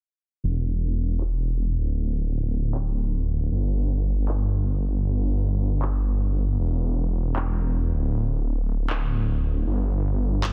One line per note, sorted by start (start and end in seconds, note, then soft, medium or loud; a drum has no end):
0.44 1.76 E1 medium
1.21 clap medium
1.78 3.50 D1 medium
2.74 clap medium
3.51 6.57 G1 medium
4.28 clap medium
5.82 clap medium
6.59 7.92 E1 medium
7.36 clap medium
7.94 9.65 D1 medium
8.90 clap medium
9.67 10.53 G1 medium
10.44 clap medium